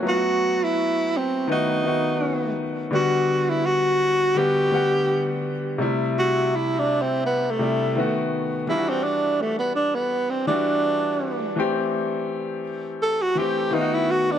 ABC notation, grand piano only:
X:1
M:4/4
L:1/8
Q:"Swing 16ths" 1/4=83
K:Ador
V:1 name="Grand piano"
[F,A,B,=F^F]3 z [^D,A,B,F] [D,A,B,F]2 z | [D,G,B,F]3 z [D,G,B,F] [D,G,B,f]2 z | [C,G,A,E]3 z2 [C,G,A,E] [^D,A,B,F]2 | [E,G,D=F^F]3 z2 [E,G,DF]2 z |
[E,A,CG]3 z2 [E,A,CG] [^D,A,B,=F^F]2 |]